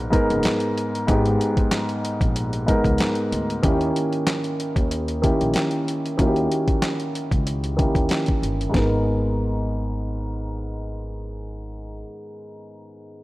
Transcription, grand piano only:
0.00 0.10 G#2 medium
0.00 0.11 G#3 medium
0.00 0.11 B3 medium
0.00 0.12 D#4 medium
0.00 0.13 A#4 loud
0.10 0.71 G#2 medium
0.10 0.71 G#3 medium
0.10 0.71 B3 medium
0.10 0.72 D#4 medium
0.10 0.72 A#4 loud
1.07 1.88 G#2 medium
1.07 1.88 G#3 medium
1.07 1.88 B3 medium
1.07 1.89 D#4 medium
1.07 1.89 G4 medium
2.66 3.27 G#2 medium
2.66 3.27 G#3 medium
2.66 3.27 B3 medium
2.66 3.27 D#4 medium
2.66 3.28 A#4 medium
3.62 4.43 D#3 medium
3.62 4.43 A#3 medium
3.62 4.44 C#4 medium
3.62 4.44 E4 medium
3.62 4.44 G4 medium
5.22 5.82 D#3 medium
5.22 5.82 A#3 medium
5.22 5.83 C#4 medium
5.22 5.83 E4 medium
5.22 5.83 G4 medium
6.17 6.98 D#3 medium
6.17 6.98 A#3 medium
6.17 6.99 C#4 medium
6.17 6.99 E4 medium
6.17 6.26 F#4 medium
6.26 7.03 G4 medium
7.77 8.37 D#3 medium
7.77 8.37 A#3 medium
7.77 8.38 C#4 medium
7.77 8.38 E4 medium
7.77 8.38 G4 medium
8.69 11.97 G#2 medium
8.69 12.00 G#3 medium
8.74 12.02 B3 medium
8.74 12.04 D#4 medium
8.78 12.06 A#4 medium

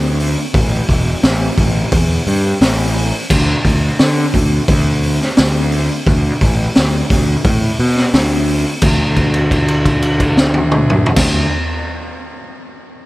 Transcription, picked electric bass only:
0.00 0.35 D2 loud
0.54 0.79 A1 medium
0.89 1.14 E1 medium
1.24 1.48 A1 medium
1.57 1.82 A1 medium
1.92 2.17 E2 loud
2.27 2.52 G2 loud
2.61 3.11 A1 loud
3.30 3.55 D2 medium
3.65 3.90 D2 medium
4.00 4.25 D3 loud
4.34 4.59 D2 loud
4.68 5.18 D2 loud
5.39 5.88 D2 loud
6.07 6.32 D2 medium
6.41 6.66 A1 medium
6.78 7.02 D2 medium
7.10 7.35 D2 medium
7.45 7.70 A2 loud
7.80 8.04 B2 loud
8.14 8.63 D2 loud
8.82 11.04 D2 medium
11.17 11.46 D2 loud

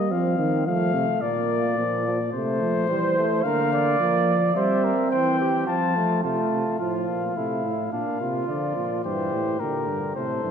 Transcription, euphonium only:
0.00 0.13 G3 medium
0.11 0.38 F3 medium
0.39 0.68 D#3 medium
0.67 0.93 F3 medium
0.94 1.07 C3 medium
1.22 1.77 A#2 medium
1.78 2.32 A#2 medium
2.33 2.62 C3 medium
2.61 2.88 F3 medium
2.89 3.43 E3 medium
3.44 3.99 D3 medium
4.00 4.55 F3 medium
4.55 4.91 G3 medium
5.12 5.64 E3 medium
5.68 6.23 F3 medium
6.24 6.37 C3 medium
6.52 6.65 C3 medium
6.80 7.09 A2 medium
7.08 7.35 A#2 soft
7.36 7.63 C3 soft
7.64 7.91 A2 medium
7.92 8.05 A#2 soft
8.21 8.48 C3 medium
8.48 8.76 D3 medium
8.76 9.04 A#2 medium
9.04 9.32 G2 soft
9.32 9.59 A2 medium
9.60 9.89 A#2 soft
9.88 10.15 G2 soft
10.16 10.43 A2 medium
10.44 10.51 G2 medium

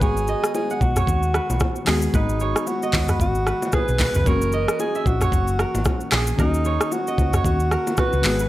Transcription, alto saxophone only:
0.02 0.51 G#4 loud
0.55 0.83 G#4 loud
0.82 1.87 F#4 medium
2.15 2.69 D#4 medium
2.68 3.20 F#4 loud
3.21 3.76 F#4 loud
3.74 4.29 B4 loud
4.27 4.80 A#4 loud
4.80 5.08 G#4 loud
5.07 6.12 F#4 loud
6.40 6.94 D#4 medium
6.93 7.45 F#4 loud
7.46 8.00 F#4 loud
7.99 8.49 B4 loud

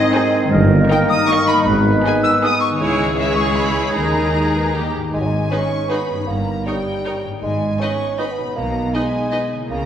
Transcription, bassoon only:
0.00 1.66 D#3 medium
1.66 2.50 D#3 medium
2.80 3.98 C#3 medium
3.96 4.95 D#3 soft
5.13 5.22 G#3 medium
5.21 5.28 F#3 medium
5.26 5.51 G#3 medium
5.51 5.91 C#4 medium
5.89 6.29 B3 medium
6.28 6.65 A#3 medium
6.66 7.22 G3 medium
7.43 7.82 G#3 medium
7.80 8.21 C#4 medium
8.19 8.27 B3 medium
8.25 8.33 C#4 soft
8.31 8.55 B3 medium
8.56 8.95 A#3 medium
8.94 9.50 G#3 medium
9.70 9.86 A#3 medium

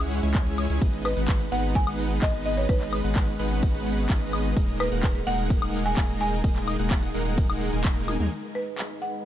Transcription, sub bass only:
0.00 0.21 C#2 loud
0.23 0.68 C#2 loud
0.70 0.79 C#2 medium
0.82 1.14 G#1 loud
1.17 1.50 G#1 loud
1.52 1.85 G#1 loud
1.87 2.20 G#1 loud
2.22 2.67 G#1 loud
2.69 3.02 G#1 loud
3.04 3.37 G#1 loud
3.39 3.72 G#1 loud
3.75 4.07 G#1 medium
4.10 4.54 G#1 loud
4.57 4.89 D#1 loud
4.92 5.24 D#1 loud
5.27 5.60 D#1 loud
5.62 5.95 D#1 loud
5.97 6.42 D#1 loud
6.44 6.77 D#1 loud
6.79 7.12 D#1 loud
7.14 7.47 D#1 loud
7.49 7.71 D#1 loud
7.73 8.17 D#1 loud
8.20 8.29 D#2 loud

